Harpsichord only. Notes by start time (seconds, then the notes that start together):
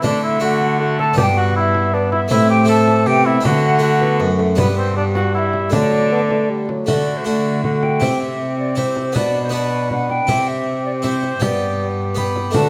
0.02 D3 A3 D4
0.40 A3 D4
1.13 G2 B3 D4
2.28 A2 A3 C4 E4
2.65 A3 C4 E4
3.06 C3
3.40 D3 A3 D4
3.79 A3 D4
4.20 F#2
4.55 G2 B3 D4
5.70 D3 A3 D4
6.86 D3 A3 F#4
7.24 A3 F#4
8.00 C3 C4 E4
8.75 C4 E4
9.12 B2 B3 D4 F#4
9.49 B3 D4 F#4
10.27 C3 C4 E4
11.02 C4 E4
11.40 G2 B3 G4
12.15 B3 G4
12.51 D3 A3 D4 F#4